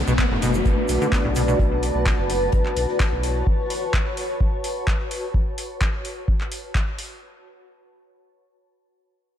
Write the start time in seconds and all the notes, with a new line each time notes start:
Already playing: A3 D4 F#4 B4 D5, downlifter
0.07 B1 B2, shaker
0.12 A5
0.18 B3, kick, snare, clap, closed hi-hat, shaker
0.31 F#1 A2, snare
0.42 B2, closed hi-hat, open hi-hat, shaker
0.54 F#3, shaker
0.65 F#1, kick, closed hi-hat, shaker
0.89 B1, closed hi-hat, open hi-hat, shaker
1.01 D3, closed hi-hat, shaker
1.12 B3, kick, snare, clap, closed hi-hat, shaker
1.25 B1 A2
1.36 B2, closed hi-hat, open hi-hat, shaker
1.48 B2, closed hi-hat, shaker
1.59 B1, kick, closed hi-hat
1.83 closed hi-hat, open hi-hat
1.95 B1
2.06 kick, snare, clap, closed hi-hat
2.18 F#1
2.30 closed hi-hat, open hi-hat
2.43 C#5
2.52 F#1 E4, kick, closed hi-hat
2.66 clap
2.76 B1, snare, closed hi-hat, open hi-hat
2.88 snare
3.00 kick, snare, clap, closed hi-hat
3.12 B1
3.23 snare, closed hi-hat, open hi-hat
3.47 kick
3.70 open hi-hat
3.94 kick, clap
4.17 open hi-hat
4.41 kick
4.64 open hi-hat
4.87 kick, clap
5.11 open hi-hat
5.34 kick
5.58 open hi-hat
5.81 kick, clap
6.05 open hi-hat
6.28 kick
6.41 clap
6.52 open hi-hat
6.75 kick, clap
6.99 open hi-hat